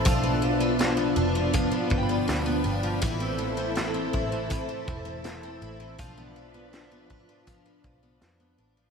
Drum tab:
HH |x-x-x-x-|x-x-x-x-|x-x-x-x-|
SD |--o---o-|--o---o-|--o---o-|
BD |o---oo--|o--ooo--|o--ooo--|